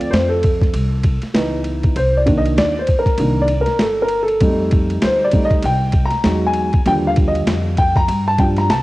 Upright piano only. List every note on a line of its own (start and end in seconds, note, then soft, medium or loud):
0.00 0.38 F3 medium
0.00 0.39 A3 medium
0.00 0.39 C4 medium
0.00 0.13 D5 loud
0.11 0.28 C5 loud
0.29 1.18 A4 medium
1.34 1.93 E3 medium
1.34 1.93 B3 soft
1.34 1.93 D#4 medium
1.96 2.17 C5 medium
2.17 2.38 D5 medium
2.26 2.69 D#3 medium
2.26 2.70 A#3 medium
2.26 2.70 D4 medium
2.38 2.58 D#5 loud
2.58 2.79 D5 loud
2.79 2.97 C5 medium
2.99 3.41 A#4 medium
3.19 3.47 D#3 soft
3.19 3.47 A#3 soft
3.19 3.47 D4 medium
3.41 3.59 D5 medium
3.61 3.81 A#4 medium
3.81 4.02 A4 medium
4.02 4.20 A#4 medium
4.23 4.79 A4 medium
4.41 5.29 G3 medium
4.41 5.29 A3 medium
4.41 5.30 D#4 medium
5.04 5.24 C5 loud
5.24 5.45 D5 medium
5.33 5.61 G3 soft
5.33 5.61 A3 soft
5.33 5.61 D#4 medium
5.45 5.65 D#5 medium
5.66 6.07 G5 loud
6.05 6.47 A#5 medium
6.24 6.67 F#3 medium
6.24 6.67 G#3 soft
6.24 6.68 D#4 medium
6.47 6.88 G#5 medium
6.85 7.74 D3 medium
6.85 7.74 F3 medium
6.85 7.74 G3 medium
6.85 6.92 G5 loud
7.07 7.12 F5 medium
7.28 7.56 D#5 loud
7.78 7.97 G5 loud
7.96 8.28 A#5 loud
8.28 8.40 A5 loud
8.38 8.66 F3 soft
8.38 8.66 G3 soft
8.38 8.67 D4 medium
8.38 8.45 G5 medium
8.58 8.71 A#5 medium
8.70 8.83 A5 medium